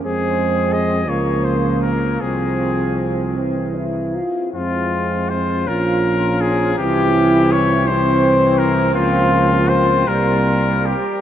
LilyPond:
<<
  \new Staff \with { instrumentName = "Flugelhorn" } { \time 6/8 \key f \minor \tempo 4. = 53 aes'4 ees''8 des''8 c''8 bes'8 | aes'4. r4. | f'4 c''8 bes'4 aes'8 | g'4 des''8 c''4 bes'8 |
f'4 c''8 bes'4 g'8 | }
  \new Staff \with { instrumentName = "Euphonium" } { \time 6/8 \key f \minor c'4. bes4. | c'4. c'8 e'8 f'8 | c'4. des'4. | c'4. c'4. |
bes4. bes4 r8 | }
  \new Staff \with { instrumentName = "French horn section" } { \time 6/8 \key f \minor c'4. bes4. | c'2~ c'16 r8. | r4. f'4. | e'4. c'4.~ |
c'4. g4. | }
  \new Staff \with { instrumentName = "Trombone" } { \clef bass \time 6/8 \key f \minor aes4. f4. | f4. e4 r8 | aes4. f4. | e4. e4. |
f4. g4 r8 | }
  \new Staff \with { instrumentName = "Tuba" } { \clef bass \time 6/8 \key f \minor f,4. des,4. | c,2~ c,8 r8 | f,4. bes,,4. | c,2. |
des,4. c,4 r8 | }
>>